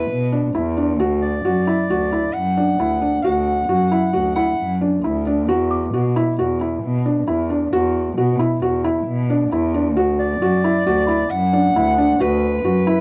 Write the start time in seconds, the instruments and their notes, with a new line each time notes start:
Already playing: felt piano E4, soprano saxophone B4
0.10 cello B2
0.32 felt piano D4
0.55 cello E2, felt piano E4
0.77 felt piano D4
1.00 cello D2, felt piano F#4
1.22 soprano saxophone D5
1.45 cello F#2, felt piano F#4
1.67 felt piano E4
1.90 cello D2, felt piano F#4
2.12 felt piano E4
2.33 cello F#2, soprano saxophone F#5
2.57 felt piano D4
2.80 cello D2, felt piano E4
3.02 felt piano D4
3.23 cello D2, felt piano F#4, soprano saxophone F#5
3.69 cello F#2, felt piano F#4
3.92 felt piano E4
4.13 cello D2, felt piano F#4
4.36 felt piano E4, soprano saxophone F#5
4.60 cello F#2
4.82 felt piano D4
5.04 cello D2, felt piano E4
5.27 felt piano D4
5.48 cello E2, felt piano F#4
5.71 celesta D6
5.94 cello B2, felt piano F#4
6.16 felt piano E4
6.39 cello E2, felt piano F#4
6.61 felt piano E4
6.83 cello B2
7.06 felt piano D4
7.28 cello E2, felt piano E4
7.50 felt piano D4
7.73 cello E2, felt piano F#4
8.18 cello B2, felt piano F#4
8.39 felt piano E4
8.62 cello E2, felt piano F#4
8.85 felt piano E4
9.07 cello B2
9.30 felt piano D4
9.52 cello E2, felt piano E4
9.74 felt piano D4
9.96 cello D2, felt piano F#4
10.19 soprano saxophone D5
10.41 cello F#2, felt piano F#4
10.64 felt piano E4
10.86 cello D2, felt piano F#4
11.07 felt piano E4, celesta B5
11.30 cello F#2, soprano saxophone F#5
11.53 felt piano D4
11.75 cello D2, felt piano E4
11.98 felt piano D4
12.20 cello D2, felt piano F#4, soprano saxophone B4
12.65 cello F#2, felt piano F#4
12.87 felt piano E4